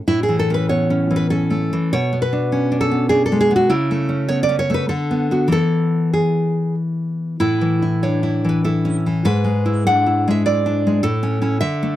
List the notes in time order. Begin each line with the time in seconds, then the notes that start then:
0.08 A2 E4
0.23 G#4
0.29 E3
0.39 A4
0.50 C#4 B4
0.69 B3 C#5
0.90 C#4
1.11 E3
1.16 B4
1.30 C#4 A4
1.50 A3
1.73 E3
1.93 B2 C#5
2.13 B3
2.22 B4
2.33 D4
2.52 C#4
2.72 D4
2.81 A4
2.91 B3
3.09 D4 G#4
3.26 A4
3.32 G#3
3.41 G#4
3.51 B3
3.56 F#4
3.70 C#3 E4
3.91 A3
4.09 C#4
4.29 B3 C#5
4.43 D5
4.49 C#4
4.59 C#5
4.70 A3
4.74 B4
4.89 D3 A4
5.11 B3
5.31 B3 F#4
5.48 E3 B3 E4
5.52 A4
6.13 G#4
7.40 A2 E4
7.61 E3
7.82 E4
8.03 D4 C#5
8.23 E4
8.45 E3
8.49 B4
8.65 E4 A4
8.85 C#4
9.06 E3
9.25 G#2 B4
9.44 G#3
9.66 E4
9.87 D4 F#5
10.06 E4
10.28 G#3 E5
10.46 E4 D5
10.66 D4
10.87 G#3
11.03 A2 A4
11.23 C#4
11.42 C#4 E4
11.61 D3 E5
11.83 A3